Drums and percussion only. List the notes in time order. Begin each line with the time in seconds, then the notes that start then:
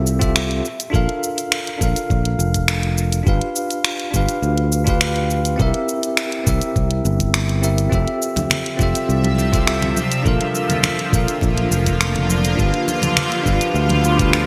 0.06 cabasa
0.21 kick, closed hi-hat, cabasa
0.36 finger snap, cabasa
0.51 closed hi-hat
0.65 cabasa
0.80 closed hi-hat, cabasa
0.94 kick, cabasa
1.09 closed hi-hat
1.23 cabasa
1.38 closed hi-hat, cabasa
1.52 finger snap, cabasa
1.67 closed hi-hat
1.81 kick, cabasa
1.96 closed hi-hat, cabasa
2.10 kick, cabasa
2.25 closed hi-hat
2.40 cabasa
2.54 kick, closed hi-hat, cabasa
2.68 finger snap, cabasa
2.83 closed hi-hat
2.98 cabasa
3.12 closed hi-hat, cabasa
3.27 kick, cabasa
3.41 closed hi-hat
3.56 cabasa
3.70 closed hi-hat, cabasa
3.85 finger snap, cabasa
4.00 closed hi-hat
4.14 kick, cabasa
4.29 closed hi-hat, cabasa
4.43 cabasa
4.58 closed hi-hat
4.72 cabasa
4.87 kick, closed hi-hat, cabasa
5.01 finger snap, cabasa
5.16 closed hi-hat
5.30 cabasa
5.45 closed hi-hat, cabasa
5.59 kick, cabasa
5.74 closed hi-hat
5.89 cabasa
6.03 closed hi-hat, cabasa
6.17 finger snap, cabasa
6.32 closed hi-hat
6.47 kick, cabasa
6.61 closed hi-hat, cabasa
6.76 kick, cabasa
6.91 closed hi-hat
7.05 cabasa
7.20 kick, closed hi-hat, cabasa
7.34 finger snap, cabasa
7.49 closed hi-hat
7.63 cabasa
7.78 closed hi-hat, cabasa
7.92 kick, cabasa
8.08 closed hi-hat
8.22 cabasa
8.36 closed hi-hat, muted conga, high conga, low conga, cabasa
8.50 finger snap, low conga, cabasa
8.66 closed hi-hat
8.79 kick, muted conga, cabasa
8.95 closed hi-hat, cabasa
9.10 cabasa
9.24 closed hi-hat, high conga
9.38 muted conga, cabasa
9.53 kick, closed hi-hat, cabasa
9.67 finger snap, cabasa
9.82 closed hi-hat, muted conga, low conga
9.97 high conga, cabasa
10.12 closed hi-hat, cabasa
10.26 kick, cabasa
10.41 closed hi-hat, muted conga
10.55 cabasa
10.69 closed hi-hat, high conga, low conga, cabasa
10.83 finger snap, muted conga, low conga, cabasa
10.99 closed hi-hat
11.13 kick, cabasa
11.28 closed hi-hat, cabasa
11.41 kick, muted conga, cabasa
11.57 closed hi-hat, high conga
11.72 cabasa
11.86 kick, closed hi-hat, muted conga, cabasa
12.01 finger snap, cabasa
12.15 closed hi-hat, low conga
12.30 high conga, cabasa
12.44 closed hi-hat, muted conga, cabasa
12.59 kick, cabasa
12.74 closed hi-hat
12.88 muted conga, cabasa
13.02 closed hi-hat, high conga, low conga, cabasa
13.17 finger snap, low conga, cabasa
13.32 closed hi-hat
13.46 kick, muted conga, cabasa
13.61 closed hi-hat, cabasa
13.75 cabasa
13.89 closed hi-hat, muted conga, high conga
14.04 cabasa
14.19 kick, closed hi-hat, cabasa
14.33 finger snap, cabasa